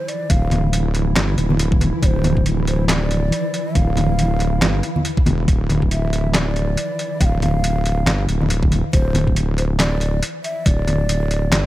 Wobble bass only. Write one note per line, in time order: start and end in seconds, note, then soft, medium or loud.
0.30 1.15 D1 loud
1.16 1.36 G1 medium
1.38 1.92 D1 loud
2.03 3.31 D1 loud
3.75 4.61 D1 loud
4.62 4.82 G1 medium
5.26 5.47 E1 loud
5.48 6.76 D1 loud
7.21 8.06 D1 loud
8.07 8.27 G1 medium
8.28 8.83 D1 loud
8.93 10.22 D1 loud
10.66 11.51 D1 loud
11.52 11.66 G1 medium